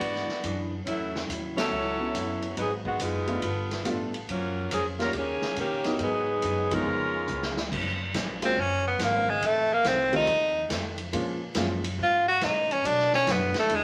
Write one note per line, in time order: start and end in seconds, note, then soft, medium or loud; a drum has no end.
0.00 0.26 G#2 medium
0.00 0.30 E3 soft
0.00 0.68 B3 medium
0.00 0.30 B3 soft
0.00 0.31 D4 soft
0.00 0.68 F#4 medium
0.00 0.31 G#4 soft
0.00 0.68 D5 loud
0.00 kick soft
0.00 ride medium
0.16 snare soft
0.27 muted upright bass stroke soft
0.27 snare soft
0.43 0.85 F#2 medium
0.43 0.73 E3 medium
0.43 0.73 B3 medium
0.43 0.74 D4 medium
0.43 0.74 G#4 medium
0.43 kick soft
0.43 hi-hat pedal soft
0.43 ride medium
0.84 1.27 E2 medium
0.84 1.16 A2 soft
0.84 1.25 F#3 medium
0.84 1.16 F#3 soft
0.84 1.26 A3 medium
0.84 1.25 C#4 medium
0.84 1.17 C#4 soft
0.84 1.25 E4 medium
0.84 kick soft
0.84 ride medium
0.89 1.17 E4 soft
1.16 snare medium
1.28 1.70 D#2 medium
1.28 1.58 A2 medium
1.28 1.59 F#3 medium
1.28 1.59 C#4 medium
1.28 1.59 E4 medium
1.28 kick soft
1.28 hi-hat pedal medium
1.28 ride medium
1.56 1.70 F#3 medium
1.56 2.53 F#3 medium
1.56 1.70 B3 medium
1.56 2.53 C#4 medium
1.56 1.70 C#4 medium
1.56 2.53 E4 medium
1.56 1.70 E4 medium
1.56 2.53 A4 loud
1.56 snare medium
1.56 ride medium
1.71 2.13 C#2 medium
1.71 2.01 A2 soft
1.71 2.02 F#3 soft
1.71 2.02 C#4 soft
1.71 2.02 E4 soft
1.99 2.54 F#3 medium
1.99 2.54 B3 soft
1.99 2.54 C#4 soft
1.99 2.54 E4 medium
2.13 2.56 F#1 medium
2.13 2.44 A2 medium
2.13 2.44 F#3 medium
2.13 2.45 C#4 medium
2.13 2.45 E4 medium
2.13 kick soft
2.13 hi-hat pedal medium
2.13 ride medium
2.42 ride soft
2.56 2.99 G#1 medium
2.56 2.86 G#2 soft
2.56 2.69 F#3 medium
2.56 2.87 F#3 soft
2.56 2.70 B3 medium
2.56 2.87 B3 soft
2.56 2.70 D#4 medium
2.56 2.88 D#4 medium
2.56 2.70 G#4 medium
2.56 kick soft
2.56 ride medium
2.85 2.99 D#3 medium
2.85 2.99 G#3 medium
2.85 2.99 B3 medium
2.85 2.99 F#4 medium
2.85 kick soft
2.99 3.41 F#1 medium
2.99 3.30 G#2 soft
2.99 3.30 F#3 medium
2.99 3.43 G#3 medium
2.99 4.14 B3 medium
2.99 3.31 B3 medium
2.99 3.43 D#4 medium
2.99 3.31 D#4 medium
2.99 4.14 F4 medium
2.99 kick soft
2.99 hi-hat pedal medium
2.99 ride medium
3.27 3.41 A3 medium
3.27 3.41 B3 soft
3.27 3.41 D4 soft
3.27 3.41 F4 medium
3.27 ride soft
3.42 3.84 G1 medium
3.42 3.73 G3 soft
3.42 3.73 B3 soft
3.42 3.73 F4 soft
3.42 3.74 A4 medium
3.42 kick soft
3.42 ride medium
3.71 snare soft
3.71 ride soft
3.85 4.27 A1 medium
3.85 4.15 G3 medium
3.85 4.11 A3 medium
3.85 4.11 B3 soft
3.85 4.16 B3 medium
3.85 4.11 D4 medium
3.85 4.11 F4 medium
3.85 4.16 F4 medium
3.85 4.17 A4 medium
3.85 kick soft
3.85 hi-hat pedal medium
3.85 ride medium
4.14 ride soft
4.28 4.70 F#2 medium
4.28 4.59 F#2 soft
4.28 4.59 F3 soft
4.28 4.68 F#3 medium
4.28 4.68 A#3 medium
4.28 4.59 A#3 soft
4.28 4.68 C#4 medium
4.28 4.68 F4 medium
4.28 kick soft
4.28 ride medium
4.32 4.60 C#4 soft
4.71 5.13 F2 medium
4.71 5.01 F#2 soft
4.71 4.84 F3 medium
4.71 5.01 F3 medium
4.71 4.84 A#3 medium
4.71 5.02 A#3 medium
4.71 4.84 C#4 medium
4.71 5.02 C#4 medium
4.71 4.84 G#4 medium
4.71 kick soft
4.71 hi-hat pedal medium
4.71 ride medium
4.99 5.08 F#3 medium
4.99 5.12 G3 medium
4.99 5.12 A#3 medium
4.99 5.12 C#4 medium
4.99 5.09 C#4 medium
4.99 5.12 F4 medium
4.99 5.08 F4 medium
4.99 5.09 A#4 medium
4.99 snare soft
4.99 ride soft
5.12 5.40 D#2 medium
5.12 5.44 D#3 soft
5.12 5.57 D#3 medium
5.12 5.44 A#3 soft
5.12 5.57 A#3 medium
5.12 5.57 C#4 medium
5.12 5.16 G4 medium
5.12 5.58 G#4 medium
5.12 kick soft
5.12 ride medium
5.16 5.45 C#4 soft
5.16 5.46 G4 soft
5.42 snare medium
5.56 5.98 A#2 medium
5.56 5.87 D#3 medium
5.56 5.97 D#3 medium
5.56 5.97 A#3 medium
5.56 5.88 A#3 medium
5.56 5.98 C#4 medium
5.56 5.88 C#4 medium
5.56 5.97 G4 medium
5.56 5.88 G4 medium
5.56 kick soft
5.56 hi-hat pedal soft
5.56 ride medium
5.84 6.40 F#3 medium
5.84 6.40 B3 medium
5.84 6.40 D#4 medium
5.84 6.40 A#4 medium
5.84 snare soft
5.84 ride soft
5.99 6.41 G#2 medium
5.99 6.30 G#2 soft
5.99 6.30 F#3 soft
5.99 6.72 F#3 medium
5.99 6.72 B3 medium
5.99 6.31 B3 soft
5.99 6.72 D#4 medium
5.99 6.72 G#4 medium
5.99 kick soft
5.99 ride medium
6.03 6.31 D#4 soft
6.42 6.84 F#2 medium
6.42 6.73 G#2 medium
6.42 6.73 F#3 medium
6.42 6.73 B3 medium
6.42 6.73 D#4 medium
6.42 kick soft
6.42 hi-hat pedal medium
6.42 ride medium
6.71 7.26 F3 medium
6.71 7.26 G#3 medium
6.71 7.57 G#3 medium
6.71 7.26 B3 medium
6.71 7.57 C#4 medium
6.71 7.26 D#4 medium
6.71 7.57 F4 medium
6.71 7.57 A#4 medium
6.71 kick medium
6.71 ride medium
6.85 7.27 F2 medium
6.85 7.15 C#3 soft
6.85 7.16 G#3 medium
6.85 7.16 B3 medium
6.85 7.16 F4 soft
7.27 7.70 C#2 medium
7.27 7.57 C#3 medium
7.27 7.58 G#3 medium
7.27 7.58 B3 medium
7.27 7.59 F4 medium
7.27 hi-hat pedal medium
7.43 snare medium
7.57 snare medium
7.70 8.13 F#1 medium
7.70 8.00 F#2 medium
7.70 8.01 F3 medium
7.70 8.02 A#3 medium
7.70 8.02 C#4 medium
7.70 kick medium
7.70 crash medium
8.13 8.56 A#1 medium
8.13 8.43 F#2 medium
8.13 8.44 F3 medium
8.13 8.44 A#3 medium
8.13 8.44 C#4 medium
8.13 kick soft
8.13 snare medium
8.13 hi-hat pedal medium
8.13 ride medium
8.42 8.55 F#3 medium
8.42 8.55 G#3 medium
8.42 8.56 A#3 medium
8.42 8.62 C4 medium
8.42 8.56 C#4 medium
8.42 8.55 F4 medium
8.42 ride medium
8.56 8.98 F#1 medium
8.56 8.86 F#2 soft
8.56 8.87 F3 soft
8.56 8.87 A#3 soft
8.56 8.88 C#4 soft
8.56 kick soft
8.61 8.87 C#4 medium
8.87 9.05 B3 medium
8.99 9.41 G#1 loud
8.99 9.29 F#2 medium
8.99 9.29 F3 medium
8.99 9.30 A#3 medium
8.99 9.31 C#4 medium
8.99 kick soft
8.99 snare medium
8.99 hi-hat pedal medium
8.99 ride medium
9.03 9.31 A#3 medium
9.29 9.47 G#3 medium
9.42 9.84 A1 medium
9.42 9.72 F2 soft
9.42 9.72 D#3 soft
9.42 9.73 A3 soft
9.42 9.74 C4 soft
9.42 kick soft
9.42 ride medium
9.46 9.75 A3 medium
9.73 9.89 A#3 medium
9.83 10.26 C2 medium
9.83 10.14 F2 medium
9.83 10.15 D#3 medium
9.83 10.15 A3 medium
9.83 10.15 C4 medium
9.83 kick soft
9.83 snare medium
9.83 hi-hat pedal medium
9.83 ride medium
9.88 10.15 C4 medium
10.12 10.26 D#3 medium
10.12 10.26 G3 medium
10.12 10.26 A3 medium
10.12 10.26 C4 medium
10.12 10.68 D#4 medium
10.12 10.26 F4 medium
10.12 ride soft
10.26 10.69 D#2 medium
10.26 10.57 F2 soft
10.26 10.58 D#3 soft
10.26 10.58 A3 soft
10.26 10.58 C4 soft
10.26 kick soft
10.26 ride medium
10.69 10.99 F2 medium
10.69 11.12 F2 medium
10.69 11.00 D#3 medium
10.69 11.00 A3 medium
10.69 11.01 C4 medium
10.69 kick soft
10.69 snare medium
10.69 hi-hat pedal soft
10.69 ride medium
10.98 ride soft
11.13 11.43 A#2 medium
11.13 11.55 A#2 medium
11.13 11.39 F3 medium
11.13 11.43 F3 medium
11.13 11.38 G#3 soft
11.13 11.44 G#3 medium
11.13 11.39 A#3 soft
11.13 11.39 C#4 soft
11.13 11.44 C#4 medium
11.13 11.39 F4 medium
11.13 kick soft
11.13 ride medium
11.55 11.97 F#2 medium
11.55 11.86 A#2 medium
11.55 11.86 F3 medium
11.55 11.82 F3 medium
11.55 11.82 G#3 medium
11.55 11.86 G#3 medium
11.55 11.82 A#3 medium
11.55 11.82 C#4 soft
11.55 11.87 C#4 medium
11.55 11.82 F4 medium
11.55 kick soft
11.55 snare medium
11.55 hi-hat pedal medium
11.55 ride medium
11.84 ride medium
11.98 12.41 G#2 medium
11.98 12.28 A#2 soft
11.98 12.29 F3 soft
11.98 12.29 G#3 soft
11.98 12.30 C#4 medium
11.98 kick soft
12.03 12.27 F4 medium
12.28 12.46 F#4 loud
12.41 12.71 A#2 medium
12.41 12.84 A#2 medium
12.41 12.71 F3 medium
12.41 12.72 G#3 medium
12.41 12.72 C#4 medium
12.41 12.73 D#4 medium
12.41 kick soft
12.41 snare medium
12.41 hi-hat pedal soft
12.41 ride medium
12.71 12.87 C#4 medium
12.71 ride soft
12.83 13.14 B2 soft
12.83 13.26 B2 medium
12.83 13.14 F#3 soft
12.83 13.15 A3 soft
12.83 13.13 D4 medium
12.83 13.15 D4 medium
12.83 kick soft
12.83 ride medium
12.99 snare soft
13.13 13.32 C#4 loud
13.13 snare soft
13.26 13.53 F#2 medium
13.26 13.56 B2 medium
13.26 13.57 F#3 medium
13.26 13.56 A3 medium
13.26 13.57 D4 medium
13.26 kick soft
13.26 snare medium
13.26 hi-hat pedal medium
13.26 ride medium
13.31 13.57 B3 medium
13.54 snare medium
13.54 ride soft
13.59 13.76 A3 medium
13.68 13.84 E2 medium
13.68 13.84 E3 soft
13.68 13.84 B3 soft
13.68 13.84 D4 medium
13.68 13.84 G#4 soft
13.68 kick soft
13.68 ride medium
13.75 13.84 G#3 medium